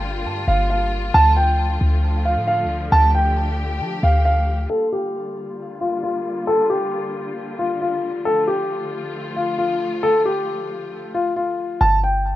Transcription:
Already playing: G1 D3 G3 A#3 F4 G5
0.25 G2
0.48 G1 F5
0.70 F5
1.14 D2 D3 F3 A3 A5
1.37 G5
1.81 D2
2.25 F5
2.37 A2
2.47 F5
2.64 D2
2.92 D2 G4 A5
3.15 G5
3.81 F3
4.03 D2 F5
4.25 F5
4.70 D3 G3 A#3 F4 A4
4.92 G4
5.81 F4
6.03 F4
6.47 A4
6.70 G4
7.59 F4
7.81 F4
8.25 F3 A3 F4 A4
8.48 G4
9.36 F4
9.58 F4
10.03 A4
10.26 G4
11.14 F4
11.36 F4
11.81 G1 A5
12.04 G5

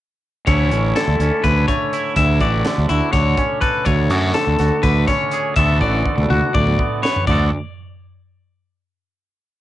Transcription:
0.47 D2 D3 A3 C#4 E4 C#5, kick, closed hi-hat
0.71 A1 C#4, closed hi-hat
0.96 D3 A4, snare, closed hi-hat
1.07 D2
1.19 D2 C#4, closed hi-hat
1.44 D2 D3 B4, kick, closed hi-hat
1.68 A3 C#5, kick, closed hi-hat
1.93 E4, closed hi-hat
2.16 D2 E5, kick, closed hi-hat
2.41 A1 F#4 D5, kick, closed hi-hat
2.65 D3, snare, closed hi-hat
2.78 D2
2.89 D2 E4 F#4, closed hi-hat
3.13 D2 D3 C#5, kick, snare, closed hi-hat
3.37 C#4, kick, closed hi-hat
3.61 A4 B4, kick, closed hi-hat
3.85 D2 C#5, kick, closed hi-hat
4.10 F#2 F#4, closed hi-hat
4.34 D3 A4, snare, closed hi-hat
4.47 D2
4.59 D2 F#4, snare, closed hi-hat
4.83 D2 D3 B4, kick, closed hi-hat
5.07 C#4 C#5, kick, snare, closed hi-hat
5.32 G#4, closed hi-hat
5.56 D2 D3 B3 F#4 A4 E5, kick, closed hi-hat
5.81 A1 F#4 D5, kick
6.05 D3, kick
6.18 D2, mid tom
6.30 D2 F#4, mid tom
6.54 D2 D3 D5, kick, mid tom
6.67 mid tom
6.79 B3, kick
7.03 B4 C#5, snare
7.16 floor tom
7.27 D2 D3 B3 F#4 D5, kick, floor tom, crash
7.31 A4

